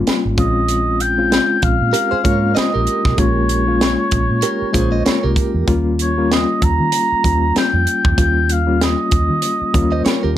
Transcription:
Already playing: G3 A#3 C#4 F4
0.07 snare, closed hi-hat
0.25 G#1
0.37 A#1 G#3 C4 C#4 F4 D#5, kick, closed hi-hat
0.68 closed hi-hat
1.00 G5, closed hi-hat
1.18 G#3 C4 C#4 F4
1.32 snare, closed hi-hat
1.62 A#1 F5, kick, closed hi-hat
1.81 A#2
1.93 G4 A#4, closed hi-hat
2.11 G#4 C5, muted fingered electric bass stroke
2.24 G#2 G#3 A#3 C#4 F4 A#4 C#5, kick, closed hi-hat
2.55 C5 D#5, muted fingered electric bass stroke, snare, closed hi-hat
2.74 A#1 G4 A#4
2.87 closed hi-hat
3.05 B1, kick, snare
3.17 A#1 G#3 A#3 C#4 F4 C#5, kick, closed hi-hat
3.49 closed hi-hat
3.67 G#3 A#3 C#4 F4
3.81 snare, closed hi-hat
4.11 A#1, kick, closed hi-hat
4.31 A#2
4.42 G4 A#4, closed hi-hat
4.62 muted fingered electric bass stroke
4.73 A#1 G#3 A#3 C#4 F4 G#4 C5, kick, closed hi-hat
4.92 C5 D#5
5.05 A#4 C#5, muted fingered electric bass stroke, snare, closed hi-hat
5.23 C2 G4 A#4
5.36 kick, closed hi-hat
5.54 E2
5.67 D#2 G3 A#3 C#4 F4, kick, closed hi-hat
5.99 C#5, closed hi-hat
6.17 G3 A#3 C#4 F4
6.32 D#5, snare, closed hi-hat
6.62 D#2 A#5, kick, closed hi-hat
6.80 D#3
6.92 closed hi-hat
7.12 muted fingered electric bass stroke
7.24 D#2 G3 A#3 C#4 F4, kick, closed hi-hat
7.56 G5, snare, closed hi-hat
7.73 F2
7.87 closed hi-hat
8.05 E2, kick
8.17 D#2 G3 A#3 C#4 F4 G5, kick, closed hi-hat
8.49 F5, closed hi-hat
8.67 G3 A#3 C#4 F4
8.81 D#5, snare, closed hi-hat
9.11 D#2, kick, closed hi-hat
9.30 D#3
9.42 closed hi-hat
9.62 muted fingered electric bass stroke
9.74 D#2 G3 A#3 C#4 F4, kick, closed hi-hat
9.92 C5 D#5
10.05 A#4 C#5, muted fingered electric bass stroke, snare, closed hi-hat
10.23 D#2 G4 A#4

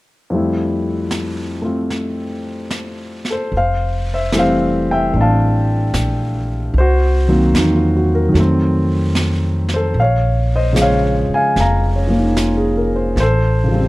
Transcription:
0.30 F2 F3 G3 A3, brush sweep
0.35 E4
1.11 snare, hi-hat pedal
1.62 A3 C4 F4
1.90 brush sweep, snare
2.71 snare, hi-hat pedal
3.25 snare
3.30 A4 C5
3.51 F1, brush sweep
3.57 C5 F5
4.14 C5 E5
4.32 E3 G3 A3, snare, hi-hat pedal
4.36 C4 C5 F5
4.91 E5 G5
5.13 A1 A3 C4 D4, brush sweep
5.21 F5 A5
5.94 A#1, snare, hi-hat pedal
6.74 C2, brush sweep
6.78 F#4 C5
7.28 D#3 F#3 A#3 C4
7.54 E2 D#4, snare, hi-hat pedal
7.75 F4
7.96 F#4
8.15 A#4
8.29 D#3 F#3
8.34 F2 A3, brush sweep, snare
8.40 C4
9.15 snare, hi-hat pedal
9.69 snare
9.74 A4 C5
9.94 A#1, brush sweep
10.00 C#5 F5
10.56 C5 D#5
10.73 C#3 F3 G#3, snare, hi-hat pedal
10.82 C#5 F5
11.29 muted upright bass stroke
11.34 F5 G#5
11.56 F1, brush sweep, snare
11.60 F5 A#5
11.96 C#4
12.07 F3 A#3
12.17 D#4
12.37 F4, snare, hi-hat pedal
12.57 G#4
12.77 A#4
12.96 C5
13.16 A1, brush sweep, snare
13.20 A4 C5
13.64 C#3
13.68 F3
13.72 G3 C4

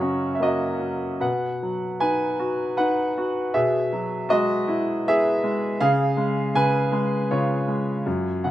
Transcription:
Already playing: F#2 C#3 F#3 F#4 C#5 D#5
0.01 C#4
0.35 E5
0.40 A#3 F#4 D#5
0.80 F#3
1.20 B2 B4 F#5
1.63 F#3
2.00 D#4 B4 G#5
2.39 F#4
2.77 D#4 B4 F#5
3.18 F#4
3.54 B2 G#4 E5
3.93 F#3
4.29 G#3 F#4 D#5
4.68 E4
5.06 B3 G#4 E5
5.44 G#3
5.81 C#3 G#4 F5
6.17 G#3
6.55 C#3 B4 G#5
6.92 G#3
7.31 C#3 F4 C#5
7.68 G#3
8.06 F#2
8.44 C#3 F#5

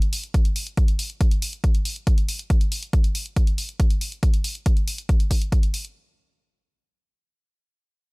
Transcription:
0.02 closed hi-hat
0.13 open hi-hat
0.24 closed hi-hat
0.34 kick, closed hi-hat
0.45 closed hi-hat
0.56 open hi-hat
0.67 closed hi-hat
0.77 kick, closed hi-hat
0.88 closed hi-hat
0.99 open hi-hat
1.10 closed hi-hat
1.21 kick, closed hi-hat
1.31 closed hi-hat
1.42 open hi-hat
1.53 closed hi-hat
1.64 kick, closed hi-hat
1.75 closed hi-hat
1.85 open hi-hat
1.96 closed hi-hat
2.07 kick, closed hi-hat
2.18 closed hi-hat
2.29 open hi-hat
2.39 closed hi-hat
2.50 kick, closed hi-hat
2.61 closed hi-hat
2.72 open hi-hat
2.83 closed hi-hat
2.93 kick, closed hi-hat
3.04 closed hi-hat
3.15 open hi-hat
3.26 closed hi-hat
3.36 kick, closed hi-hat
3.47 closed hi-hat
3.58 open hi-hat
3.69 closed hi-hat
3.80 kick, closed hi-hat
3.90 closed hi-hat
4.01 open hi-hat
4.12 closed hi-hat
4.23 kick, closed hi-hat
4.34 closed hi-hat
4.44 open hi-hat
4.55 closed hi-hat
4.66 kick, closed hi-hat
4.77 closed hi-hat
4.88 open hi-hat
4.98 closed hi-hat
5.09 kick, closed hi-hat
5.20 closed hi-hat
5.31 kick, open hi-hat
5.42 closed hi-hat
5.52 kick, closed hi-hat
5.63 closed hi-hat
5.74 open hi-hat
5.85 closed hi-hat

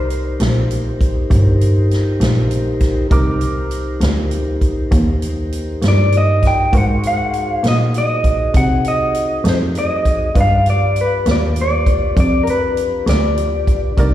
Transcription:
Already playing: C2 D#4 G4 A#4 C5 D5
0.10 closed hi-hat
0.40 A#1, snare, closed hi-hat
0.71 closed hi-hat
1.01 kick, closed hi-hat
1.31 G1, kick, closed hi-hat
1.61 closed hi-hat
1.91 snare, closed hi-hat
2.20 A#1, snare, closed hi-hat
2.51 closed hi-hat
2.80 kick, snare, closed hi-hat
3.10 C2 D#4 G4 A#4 C5 D6, kick, closed hi-hat
3.41 closed hi-hat
3.71 closed hi-hat
4.01 D2, snare, closed hi-hat
4.31 closed hi-hat
4.61 kick, closed hi-hat
4.92 D#2, kick, closed hi-hat
5.22 closed hi-hat
5.52 closed hi-hat
5.82 G2, snare, closed hi-hat
5.88 D5
6.12 closed hi-hat
6.17 D#5
6.43 kick, snare, closed hi-hat
6.47 G5
6.71 G#2 D#4 F#4 G#4 A#4 C5, kick, closed hi-hat
6.75 C5 F#5
7.03 F#5, closed hi-hat
7.33 closed hi-hat
7.50 F5
7.64 A#2, snare, closed hi-hat
7.68 D#5
7.94 D#5, closed hi-hat
8.24 kick, closed hi-hat
8.54 C3 F#5, kick, closed hi-hat
8.84 D#5, closed hi-hat
9.14 closed hi-hat
9.45 F2, snare, closed hi-hat
9.49 C5
9.75 D#5, closed hi-hat
10.05 kick, closed hi-hat
10.34 G2 D4 F4 G4 B4 D5, kick, closed hi-hat
10.41 F5
10.66 closed hi-hat
10.70 D5
10.96 closed hi-hat
11.01 B4
11.26 D#2, snare, closed hi-hat
11.31 D5
11.56 closed hi-hat
11.61 D5
11.86 kick, closed hi-hat
12.17 F2 D5, kick, closed hi-hat
12.43 A#4, closed hi-hat
12.50 B4
12.77 closed hi-hat
13.07 D2 D5, snare, closed hi-hat
13.37 closed hi-hat
13.67 kick, closed hi-hat
13.97 C2 C4 D#4 G4 A#4 D5, kick, closed hi-hat

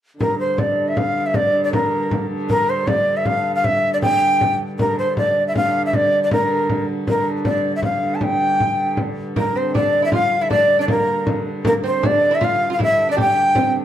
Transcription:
0.20 G2 D3 A#4, frame drum
0.40 C5, frame drum
0.58 D5, frame drum
0.88 E5
0.97 F5, frame drum
1.26 E5
1.34 D5, frame drum
1.54 frame drum
1.64 D5
1.73 A#4, frame drum
2.11 frame drum
2.50 A#4, frame drum
2.69 C5, frame drum
2.87 D5, frame drum
3.17 E5
3.25 F5, frame drum
3.55 F5
3.64 E5, frame drum
3.84 frame drum
3.94 D5
4.02 G5, frame drum
4.41 frame drum
4.60 frame drum
4.78 G2 D3 A#4, frame drum
4.99 C5, frame drum
5.17 D5, frame drum
5.48 E5
5.55 F5, frame drum
5.86 E5
5.93 D5, frame drum
6.12 frame drum
6.23 D5
6.31 A#4, frame drum
6.69 frame drum
7.07 A#4, frame drum
7.27 frame drum
7.45 D5, frame drum
7.76 E5
7.82 F5, frame drum
8.15 A5
8.21 G5, frame drum
8.40 frame drum
8.60 frame drum
8.78 frame drum
8.97 frame drum
9.36 G2 D3 A#3 A#4, frame drum
9.55 C4 C5, frame drum
9.75 D4 D5, frame drum
10.02 E4 E5
10.12 F4 F5, frame drum
10.41 E4 E5
10.50 D4 D5, frame drum
10.69 frame drum
10.79 D4 D5
10.88 A#3 A#4, frame drum
11.27 frame drum
11.65 A#3 A#4, frame drum
11.84 C4 C5, frame drum
12.03 D4 D5, frame drum
12.31 E4
12.35 E5
12.41 F4 F5, frame drum
12.70 F4 F5
12.79 E4, frame drum
12.83 E5
12.99 frame drum
13.09 D4 D5
13.17 G4, frame drum
13.21 G5
13.55 C4, frame drum

